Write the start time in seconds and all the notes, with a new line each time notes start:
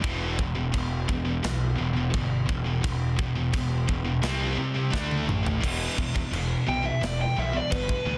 0.04 E1 E2 B2 E3, kick, china
0.38 E1 E2 B2, kick
0.55 E2 B2
0.73 E1 E2 B2, kick, china
1.08 E1 E2 B2, kick
1.25 E2 B2
1.43 B1 E2 B2, snare, china
1.76 E1 E2 B2
1.93 E2 B2
2.10 E2 B2, kick, china
2.14 G1 E2
2.46 E1 E2 B2, kick
2.64 E2 B2
2.81 E1 E2 B2, kick, china
3.16 E1 E2 B2, kick
3.35 E2 B2
3.52 E1 E2 B2, kick, china
3.87 E1 E2 B2, kick
4.05 E2 B2
4.22 C2 C3 G3 C4, snare, china
4.57 C3 G3
4.75 C3 G3
4.93 D2 D3 A3 D4, kick, snare
5.11 high tom
5.27 A1 D3 A3, mid tom
5.44 D3 A3, floor tom
5.61 E1 E2 B2 E3, kick, crash
5.97 E2 B2, kick
6.15 E2 B2, kick
6.32 E1 E2 B2, crash
6.67 B1 E2 B2 G5
6.83 E2 B2 E5
7.01 E1 E2 B2 D5, snare, crash
7.22 G5
7.36 B1 E2 B2 E5
7.52 E2 B2
7.57 D5
7.70 G1 E2 B2 B4, kick, crash
7.89 kick
8.05 D2 E2 B2